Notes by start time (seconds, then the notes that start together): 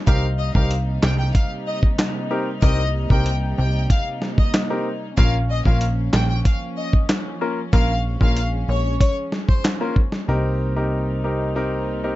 0.07 C2 C3 G3 A#3 C4 D#4 G4 A#4 F5, kick, closed hi-hat
0.39 D#5
0.55 C2 C4 D#4 G4 A#4 F5, kick
0.71 closed hi-hat
1.03 C2 G5, snare, clap
1.19 G5
1.35 F5, kick, closed hi-hat
1.67 D#5
1.83 kick
1.98 snare, clap, closed hi-hat
2.30 C4 D#4 G4 A#4
2.62 C2 C4 D#4 G4 A#4 D#5, kick, closed hi-hat
3.10 C2 C4 D#4 G4 A#4 G5, kick
3.26 closed hi-hat
3.58 C2 G5
3.90 F5, kick, closed hi-hat
4.22 snare
4.38 D#5, kick
4.54 snare, clap, closed hi-hat
4.70 C4 D#4 G4 A#4
5.17 A#1 F3 A#3 C#4 F4 A#4 F5, kick, closed hi-hat
5.50 D#5
5.65 A#1 A#3 C#4 F4 A#4 F5, kick
5.81 closed hi-hat
6.13 A#1 G5, snare, clap
6.30 G5
6.45 F5, kick, closed hi-hat
6.77 D#5
6.93 kick
7.09 snare, clap, closed hi-hat
7.41 A#3 C#4 F4 A#4
7.73 A#1 G#3 A#3 C#4 F4 A#4 F5, kick, closed hi-hat
8.21 A#1 A#3 C#4 F4 A#4 F5, kick
8.37 closed hi-hat
8.69 A#1 C#5
9.01 C#5, kick, closed hi-hat
9.32 snare
9.49 C5, kick
9.64 snare, clap, closed hi-hat
9.80 A#3 C#4 F4 A#4
9.96 kick
10.12 snare
10.28 C2 C3 G3 A#3 C4 D#4 G4 A#4
10.76 C4 D#4 G4 A#4
11.24 C4 D#4 G4 A#4
11.55 C4 D#4 G4 A#4
12.04 C4 D#4 G4 A#4